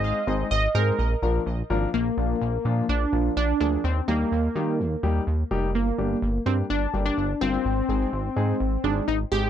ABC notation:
X:1
M:4/4
L:1/16
Q:1/4=126
K:Bbmix
V:1 name="Analog polysynth"
e4 e2 B6 z4 | B,8 D4 D2 D2 | C2 B,12 z2 | B,6 C2 D3 D3 C2- |
C8- C2 D2 E2 G2 |]
V:2 name="Grand piano"
[A,CEAc]2 [A,CEAc]2 z2 [A,CEAc]2 z2 [F,B,DFB]2 z2 [F,B,DFB]2 | z2 [F,B,DF]2 z2 [F,B,DF]2 z2 [F,B,DF]2 z2 [F,B,DA]2 | z2 [G,B,EG]2 z2 [G,B,EG]2 z2 [G,B,EG]2 z2 [G,B,EG]2 | z2 [G,B,DG]2 z2 [G,B,DG]2 z2 [G,B,DG]2 z2 [G,B,DF]2 |
z2 [A,CEA]2 z2 [A,CEA]2 z2 [A,CEA]2 z2 [A,CEA]2 |]
V:3 name="Analog synth bass" clef=bass
A,,,2 A,,,2 A,,,2 A,,2 B,,,2 B,,,2 B,,,2 A,,,2 | B,,,2 B,,,2 B,,,2 B,,2 B,,,2 B,,,2 B,,,2 D,,2 | E,,2 E,,2 E,,2 E,2 E,,2 E,,2 E,,2 F,,,2 | G,,,2 G,,,2 G,,,2 G,,2 G,,,2 G,,,2 G,,,2 G,,,2 |
A,,,2 A,,,2 A,,,2 A,,2 A,,,2 A,,,2 A,,,2 A,,,2 |]